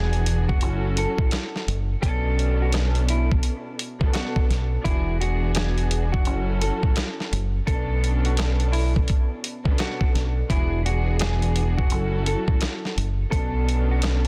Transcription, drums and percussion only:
0.13 closed hi-hat medium
0.26 closed hi-hat medium
0.49 kick loud
0.61 closed hi-hat medium
0.97 closed hi-hat medium
1.18 kick loud
1.31 cross-stick medium
1.31 snare loud
1.31 closed hi-hat medium
1.56 snare soft
1.68 closed hi-hat medium
2.03 kick loud
2.03 closed hi-hat medium
2.39 closed hi-hat medium
2.72 cross-stick loud
2.72 snare loud
2.72 closed hi-hat loud
2.95 closed hi-hat medium
3.09 closed hi-hat medium
3.32 kick loud
3.43 closed hi-hat medium
3.79 closed hi-hat medium
4.01 kick loud
4.14 cross-stick medium
4.14 snare loud
4.14 closed hi-hat medium
4.36 kick medium
4.51 snare soft
4.51 closed hi-hat medium
4.85 kick loud
4.85 closed hi-hat loud
5.21 closed hi-hat medium
5.55 cross-stick loud
5.55 snare loud
5.55 closed hi-hat loud
5.78 closed hi-hat medium
5.91 closed hi-hat medium
6.14 kick loud
6.25 closed hi-hat medium
6.62 closed hi-hat medium
6.83 kick loud
6.96 cross-stick medium
6.96 snare loud
6.96 closed hi-hat medium
7.20 snare soft
7.33 closed hi-hat medium
7.67 kick loud
7.67 closed hi-hat medium
8.04 closed hi-hat medium
8.25 closed hi-hat medium
8.37 cross-stick loud
8.37 snare loud
8.37 closed hi-hat loud
8.60 closed hi-hat medium
8.73 open hi-hat medium
8.96 kick medium
9.08 kick medium
9.08 closed hi-hat medium
9.44 closed hi-hat medium
9.65 kick loud
9.78 cross-stick medium
9.78 snare loud
9.78 closed hi-hat medium
10.01 kick medium
10.15 snare soft
10.15 closed hi-hat medium
10.50 kick loud
10.50 closed hi-hat medium
10.86 closed hi-hat medium
11.19 cross-stick loud
11.19 snare loud
11.19 closed hi-hat loud
11.42 closed hi-hat medium
11.56 closed hi-hat medium
11.79 kick medium
11.90 closed hi-hat medium
12.26 closed hi-hat medium
12.48 kick loud
12.61 cross-stick medium
12.61 snare loud
12.61 closed hi-hat medium
12.85 snare soft
12.98 closed hi-hat medium
13.32 kick loud
13.32 closed hi-hat loud
13.69 closed hi-hat medium
14.02 cross-stick loud
14.02 snare loud
14.02 closed hi-hat loud

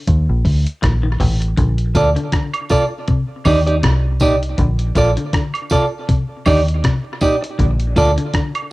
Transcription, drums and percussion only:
0.07 kick loud
0.07 closed hi-hat medium
0.45 kick loud
0.45 open hi-hat soft
0.67 closed hi-hat medium
0.83 kick loud
0.83 cross-stick loud
0.83 closed hi-hat medium
1.20 kick medium
1.20 open hi-hat medium
1.42 closed hi-hat medium
1.57 kick loud
1.57 closed hi-hat medium
1.78 closed hi-hat soft
1.95 kick medium
1.95 closed hi-hat medium
1.95 tambourine soft
2.16 closed hi-hat medium
2.32 kick loud
2.32 cross-stick loud
2.32 closed hi-hat medium
2.53 closed hi-hat soft
2.53 high woodblock medium
2.69 kick medium
2.69 closed hi-hat medium
2.69 tambourine medium
3.08 kick loud
3.08 closed hi-hat medium
3.45 kick medium
3.45 open hi-hat soft
3.45 tambourine medium
3.45 high woodblock medium
3.67 closed hi-hat medium
3.83 kick loud
3.83 cross-stick loud
3.83 closed hi-hat loud
4.20 kick medium
4.20 closed hi-hat medium
4.20 tambourine medium
4.43 closed hi-hat medium
4.58 kick loud
4.58 closed hi-hat medium
4.79 closed hi-hat medium
4.95 kick medium
4.95 closed hi-hat medium
4.95 tambourine medium
5.17 closed hi-hat medium
5.33 kick loud
5.33 cross-stick loud
5.33 closed hi-hat loud
5.54 closed hi-hat soft
5.54 high woodblock medium
5.70 kick medium
5.70 closed hi-hat medium
5.70 tambourine medium
6.09 kick loud
6.09 closed hi-hat medium
6.46 kick medium
6.46 open hi-hat soft
6.46 tambourine medium
6.46 high woodblock medium
6.68 closed hi-hat medium
6.84 kick loud
6.84 cross-stick loud
6.84 closed hi-hat loud
7.21 kick medium
7.21 closed hi-hat medium
7.21 tambourine medium
7.44 closed hi-hat medium
7.59 kick loud
7.59 closed hi-hat medium
7.80 closed hi-hat soft
7.96 kick medium
7.96 closed hi-hat medium
7.96 tambourine medium
8.18 closed hi-hat medium
8.34 kick loud
8.34 cross-stick loud
8.34 closed hi-hat medium
8.55 closed hi-hat soft
8.55 high woodblock medium

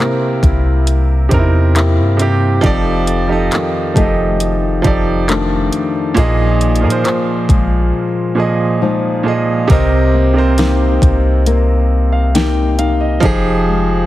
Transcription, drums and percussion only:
0.00 clap loud
0.43 kick loud
0.43 closed hi-hat medium
0.87 closed hi-hat medium
1.31 kick medium
1.31 closed hi-hat medium
1.76 clap loud
1.76 closed hi-hat medium
2.19 closed hi-hat medium
2.64 kick loud
2.64 closed hi-hat medium
3.07 closed hi-hat medium
3.52 clap loud
3.52 closed hi-hat medium
3.96 kick loud
3.96 closed hi-hat medium
4.40 closed hi-hat medium
4.84 kick medium
4.84 closed hi-hat medium
5.29 clap loud
5.29 closed hi-hat medium
5.73 closed hi-hat medium
6.17 closed hi-hat medium
6.61 closed hi-hat medium
6.76 closed hi-hat medium
6.90 closed hi-hat medium
7.05 clap loud
7.05 closed hi-hat medium
7.49 kick loud
7.49 closed hi-hat medium
9.70 kick loud
9.70 closed hi-hat medium
10.58 snare loud
10.58 closed hi-hat medium
11.02 kick loud
11.02 closed hi-hat medium
11.46 closed hi-hat medium
12.35 snare loud
12.35 closed hi-hat medium
12.79 closed hi-hat medium
13.23 kick loud
13.23 closed hi-hat medium

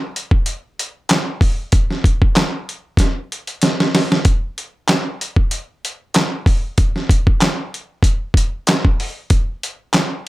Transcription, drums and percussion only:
0.16 closed hi-hat medium
0.31 kick medium
0.46 closed hi-hat medium
0.79 closed hi-hat medium
1.09 snare loud
1.09 clap loud
1.09 closed hi-hat loud
1.41 kick loud
1.41 open hi-hat medium
1.72 kick loud
1.72 closed hi-hat medium
1.91 snare soft
2.04 kick loud
2.04 closed hi-hat medium
2.22 kick medium
2.36 snare loud
2.36 clap medium
2.36 closed hi-hat medium
2.69 closed hi-hat medium
2.97 kick medium
2.97 snare medium
2.97 closed hi-hat medium
3.32 closed hi-hat medium
3.47 closed hi-hat soft
3.62 snare medium
3.62 closed hi-hat medium
3.80 snare medium
3.95 snare loud
3.95 open hi-hat medium
4.12 snare medium
4.25 kick loud
4.25 closed hi-hat medium
4.58 closed hi-hat medium
4.88 snare loud
4.88 clap loud
4.88 closed hi-hat medium
5.21 closed hi-hat medium
5.36 kick medium
5.51 closed hi-hat medium
5.85 closed hi-hat medium
6.14 snare loud
6.14 clap loud
6.14 closed hi-hat loud
6.46 kick loud
6.46 open hi-hat medium
6.78 kick loud
6.78 closed hi-hat medium
6.96 snare soft
7.09 kick loud
7.09 closed hi-hat medium
7.27 kick loud
7.41 snare loud
7.41 clap medium
7.41 closed hi-hat medium
7.74 closed hi-hat medium
8.03 kick medium
8.03 closed hi-hat medium
8.34 kick medium
8.34 closed hi-hat medium
8.67 snare loud
8.67 clap loud
8.67 closed hi-hat loud
8.85 kick loud
9.00 open hi-hat medium
9.30 kick loud
9.30 closed hi-hat medium
9.63 closed hi-hat medium
9.93 snare loud
9.93 clap medium
9.93 closed hi-hat medium

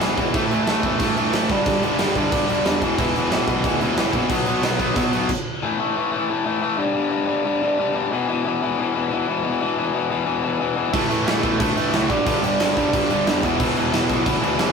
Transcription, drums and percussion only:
0.01 snare loud
0.01 crash medium
0.18 kick medium
0.18 crash medium
0.34 kick loud
0.34 crash medium
0.51 crash medium
0.67 snare loud
0.67 crash medium
0.83 kick loud
0.83 crash medium
0.99 kick loud
0.99 crash medium
1.17 crash medium
1.33 snare loud
1.33 crash medium
1.49 kick medium
1.49 crash medium
1.66 kick loud
1.66 crash loud
1.83 crash medium
1.99 snare loud
1.99 crash medium
2.15 kick medium
2.15 crash medium
2.32 kick loud
2.32 crash loud
2.49 crash medium
2.65 snare loud
2.65 crash medium
2.82 kick medium
2.82 crash medium
2.98 kick loud
2.98 crash medium
3.16 crash medium
3.31 snare loud
3.31 crash medium
3.48 kick medium
3.48 crash medium
3.64 kick loud
3.64 crash medium
3.81 crash medium
3.97 snare loud
3.97 crash medium
4.13 kick medium
4.13 crash medium
4.29 kick loud
4.29 crash loud
4.46 crash medium
4.63 snare loud
4.63 crash medium
4.79 kick medium
4.79 crash medium
4.96 kick loud
4.96 crash loud
5.13 crash medium
5.29 kick loud
5.29 crash loud
10.94 kick loud
10.94 crash loud
11.11 crash medium
11.27 snare loud
11.27 crash medium
11.43 kick loud
11.43 crash medium
11.60 kick loud
11.60 crash medium
11.77 crash medium
11.93 snare loud
11.93 crash medium
12.10 kick loud
12.10 crash medium
12.26 kick loud
12.26 crash loud
12.44 crash medium
12.60 snare loud
12.60 crash medium
12.77 kick medium
12.77 crash medium
12.93 kick loud
12.93 crash loud
13.10 crash medium
13.27 snare loud
13.27 crash medium
13.43 kick medium
13.43 crash medium
13.60 kick loud
13.60 crash loud
13.77 crash medium
13.93 snare loud
13.93 crash medium
14.09 kick loud
14.09 crash medium
14.26 kick loud
14.26 crash medium
14.44 crash medium
14.59 snare loud
14.59 crash medium

